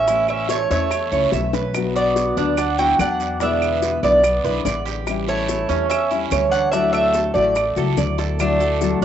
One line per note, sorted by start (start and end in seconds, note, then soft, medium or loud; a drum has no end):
0.00 0.64 A1 medium
0.00 0.26 C#4 medium
0.00 0.26 E5 loud
0.08 0.70 E3 medium
0.08 0.70 A3 medium
0.08 0.70 C#4 medium
0.08 0.48 E4 medium
0.08 0.69 E4 medium
0.08 high bongo medium
0.08 long guiro medium
0.08 maracas medium
0.28 0.49 C#4 medium
0.28 0.50 E5 medium
0.28 high bongo soft
0.28 claves medium
0.28 maracas soft
0.49 0.69 A3 medium
0.49 0.70 C#5 medium
0.49 0.69 C#5 medium
0.49 high bongo medium
0.49 short guiro medium
0.49 maracas medium
0.70 1.09 E2 medium
0.70 1.50 A3 medium
0.70 0.92 A3 medium
0.70 0.91 C#4 medium
0.70 0.90 E4 medium
0.70 1.50 C#5 medium
0.70 1.11 E5 medium
0.70 high bongo soft
0.70 short guiro medium
0.70 maracas soft
0.91 muted nylon-string guitar stroke medium
0.91 high bongo medium
0.91 long guiro medium
0.91 claves medium
0.91 maracas medium
1.12 1.31 C#2 medium
1.12 1.34 A3 medium
1.12 1.33 C#4 medium
1.12 1.32 E4 medium
1.12 1.32 C#5 medium
1.12 maracas soft
1.32 2.30 B1 medium
1.32 1.74 E3 soft
1.32 1.75 A3 soft
1.32 1.75 C#4 soft
1.32 1.53 E5 medium
1.32 high bongo medium
1.32 short guiro medium
1.32 maracas medium
1.36 1.75 E4 soft
1.53 1.94 B4 medium
1.53 low bongo medium
1.53 short guiro medium
1.53 maracas soft
1.74 2.36 B2 medium
1.74 2.37 F#3 medium
1.74 2.39 B3 medium
1.74 2.38 D4 medium
1.74 2.36 F#4 medium
1.74 high bongo medium
1.74 long guiro medium
1.74 claves medium
1.74 maracas medium
1.95 2.54 B3 medium
1.95 2.36 F#4 medium
1.95 2.58 D5 medium
1.95 high bongo soft
1.95 maracas soft
2.16 high bongo medium
2.16 short guiro medium
2.16 maracas medium
2.37 2.95 D2 medium
2.37 2.58 F#3 medium
2.37 2.58 B3 medium
2.37 2.78 D4 medium
2.37 2.58 D4 medium
2.37 2.57 F#4 medium
2.37 high bongo soft
2.37 short guiro medium
2.37 maracas soft
2.57 2.77 D4 medium
2.57 2.78 F#5 medium
2.57 muted nylon-string guitar stroke soft
2.57 high bongo medium
2.57 long guiro medium
2.57 claves medium
2.57 maracas medium
2.78 2.98 F#3 medium
2.78 2.99 B3 medium
2.78 2.99 D4 medium
2.78 2.98 E4 medium
2.78 2.98 F#4 medium
2.78 2.99 F#4 medium
2.78 3.00 G5 medium
2.78 maracas soft
2.99 3.97 E2 medium
2.99 3.40 F#3 soft
2.99 3.40 B3 soft
2.99 3.38 D4 medium
2.99 3.41 F#4 soft
2.99 3.40 D5 medium
2.99 3.39 F#5 medium
2.99 high bongo soft
2.99 low bongo medium
2.99 short guiro medium
2.99 claves medium
2.99 maracas medium
3.20 short guiro medium
3.20 maracas soft
3.40 4.02 B2 medium
3.40 4.03 D3 medium
3.40 4.03 G#3 medium
3.40 3.99 B3 medium
3.40 4.03 B3 medium
3.40 3.81 D4 medium
3.40 4.02 E4 medium
3.40 4.00 E5 medium
3.40 high bongo medium
3.40 long guiro medium
3.40 maracas medium
3.61 high bongo soft
3.61 claves medium
3.61 maracas soft
3.82 4.03 B4 medium
3.82 high bongo medium
3.82 short guiro medium
3.82 maracas medium
4.03 4.42 B1 medium
4.03 4.23 D3 medium
4.03 4.24 G#3 medium
4.03 4.82 B3 medium
4.03 4.24 B3 medium
4.03 4.23 E4 medium
4.03 4.43 D5 medium
4.03 4.83 D5 medium
4.03 high bongo soft
4.03 short guiro medium
4.03 maracas soft
4.24 muted nylon-string guitar stroke medium
4.24 high bongo medium
4.24 long guiro medium
4.24 claves medium
4.24 maracas medium
4.44 4.64 B1 medium
4.44 4.64 D3 medium
4.44 4.65 G#3 medium
4.44 4.65 B3 medium
4.44 4.65 E4 medium
4.44 4.65 B4 medium
4.44 maracas soft
4.65 5.63 A1 medium
4.65 5.06 D3 soft
4.65 5.07 G#3 soft
4.65 5.07 B3 soft
4.65 5.07 E4 soft
4.65 4.85 D5 medium
4.65 high bongo soft
4.65 low bongo medium
4.65 short guiro medium
4.65 maracas medium
4.85 5.26 G4 medium
4.85 short guiro medium
4.85 maracas soft
5.07 5.91 E3 medium
5.07 5.69 G3 medium
5.07 5.69 C#4 medium
5.07 5.69 E4 medium
5.07 high bongo medium
5.07 long guiro medium
5.07 claves medium
5.07 maracas medium
5.28 5.86 A3 medium
5.28 5.68 E4 medium
5.28 5.87 C#5 medium
5.28 high bongo soft
5.28 maracas soft
5.49 high bongo medium
5.49 short guiro medium
5.49 maracas medium
5.69 6.28 E2 medium
5.69 5.90 G3 medium
5.69 6.09 C#4 medium
5.69 5.90 C#4 medium
5.69 5.89 E4 medium
5.69 high bongo soft
5.69 short guiro medium
5.69 maracas soft
5.89 6.48 C#4 medium
5.89 6.48 E5 medium
5.89 muted nylon-string guitar stroke medium
5.89 high bongo medium
5.89 long guiro medium
5.89 claves medium
5.89 maracas medium
6.10 6.32 G3 medium
6.10 6.32 C#4 medium
6.10 6.31 E4 medium
6.10 maracas soft
6.31 7.29 D2 medium
6.31 6.73 E3 soft
6.31 6.73 G3 soft
6.31 6.74 C#4 medium
6.31 6.74 E4 soft
6.31 6.72 C#5 medium
6.31 high bongo soft
6.31 low bongo medium
6.31 short guiro medium
6.31 claves medium
6.31 maracas medium
6.49 6.70 D4 medium
6.49 6.71 F#5 loud
6.49 maracas soft
6.53 short guiro medium
6.70 7.35 D3 medium
6.70 7.35 F#3 medium
6.70 6.91 A3 medium
6.70 7.13 D4 medium
6.70 6.91 E5 medium
6.70 high bongo medium
6.70 long guiro medium
6.70 maracas medium
6.74 7.35 A3 medium
6.74 7.35 E4 medium
6.74 7.34 F#4 medium
6.92 7.32 A3 medium
6.92 7.32 E5 loud
6.92 high bongo soft
6.92 claves medium
6.92 maracas soft
7.13 7.35 A4 medium
7.13 high bongo medium
7.13 short guiro medium
7.13 maracas medium
7.33 7.74 A1 medium
7.33 8.14 A3 medium
7.33 7.55 A3 medium
7.33 7.56 E4 medium
7.33 7.55 F#4 medium
7.33 8.14 D5 medium
7.33 7.76 D5 medium
7.33 high bongo soft
7.33 short guiro medium
7.33 maracas soft
7.38 7.55 F#3 medium
7.55 muted nylon-string guitar stroke medium
7.55 high bongo medium
7.55 long guiro medium
7.55 claves medium
7.55 maracas medium
7.76 7.96 C#2 medium
7.76 7.95 F#3 soft
7.76 7.97 A3 medium
7.76 7.97 E4 medium
7.76 7.97 F#4 medium
7.76 7.97 A4 medium
7.76 maracas soft
7.97 8.95 D2 medium
7.97 8.38 F#3 soft
7.97 8.39 A3 soft
7.97 8.39 E4 soft
7.97 8.39 F#4 soft
7.97 8.18 D5 medium
7.97 high bongo soft
7.97 low bongo medium
7.97 short guiro medium
7.97 maracas medium
8.18 8.39 A4 medium
8.18 high bongo medium
8.18 short guiro medium
8.18 maracas soft
8.39 8.59 D3 medium
8.39 8.60 F#3 medium
8.39 8.98 A3 medium
8.39 8.60 A3 medium
8.39 8.99 D4 medium
8.39 8.60 E4 medium
8.39 8.59 F#4 medium
8.39 high bongo medium
8.39 long guiro medium
8.39 claves medium
8.39 maracas medium
8.60 8.81 A3 soft
8.60 8.81 E4 soft
8.60 8.80 F#4 soft
8.60 9.01 A4 medium
8.60 high bongo soft
8.60 maracas soft
8.80 9.01 D3 medium
8.80 9.01 F#3 medium
8.80 9.01 A3 medium
8.80 9.01 E4 medium
8.80 9.00 F#4 medium
8.80 high bongo medium
8.80 short guiro medium
8.80 maracas medium
9.01 9.05 F#2 medium
9.01 9.05 F#4 medium